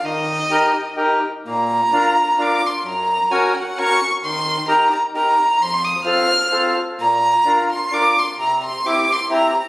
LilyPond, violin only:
\new Staff \with { instrumentName = "Violin" } { \time 3/4 \key ees \major \tempo 4 = 130 ees''2 r4 | \key bes \major bes''2 d'''8 c'''8 | bes''4 aes''8 ges''8 des'''8. r16 | c'''4 bes''8 bes''8 bes''4 |
c'''8 ees'''8 f'''4. r8 | bes''4. c'''8 d'''8 c'''8 | bes''8 c'''8 d'''8 c'''8 bes''8. r16 | }